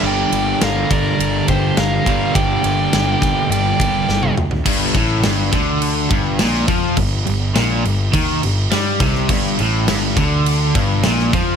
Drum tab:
CC |----------------|----------------|x-x-x-x-x-x-x-x-|x-x-x-x-x-x-x-x-|
RD |--x-x-x-x-x-x-x-|x-x-x-x-x-x-----|----------------|----------------|
SD |----o-------o---|----o-o-----o---|----o-------oo--|----o-------o--o|
T1 |----------------|-------------o--|----------------|----------------|
T2 |----------------|--------------o-|----------------|----------------|
FT |----------------|---------------o|----------------|----------------|
BD |------o---o---o-|o-----o---o-----|o-o---o---o---o-|o-------o-----o-|

CC |x-x-x-x-x-x-x-x-|
RD |----------------|
SD |----o-------oo--|
T1 |----------------|
T2 |----------------|
FT |----------------|
BD |o-----o---o---o-|